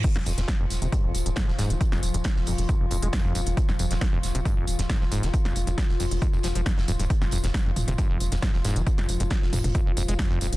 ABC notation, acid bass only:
X:1
M:4/4
L:1/16
Q:1/4=136
K:Fm
V:1 name="Acid bass" clef=bass
z F,, F,, F,, z F,, z C, G,, F,, z F,, A,, F, A,, F, | z F,, z F,, z2 F,, z F,, F,, F,, A, F,, F,, F,, z | z F,, F,, F,, z F,, z C, G,, F,, z F,, A,, F, A,, F, | z F,, z F,, z2 F,, z F,, F,, F, F, F,, F,, F,, G,, |
z F,, F,, F,, z F,, z C, G,, F,, z F,, A,, F, A,, F, | z F,, z F,, z2 F,, z F,, F,, F,, A, F,, F,, F,, z |]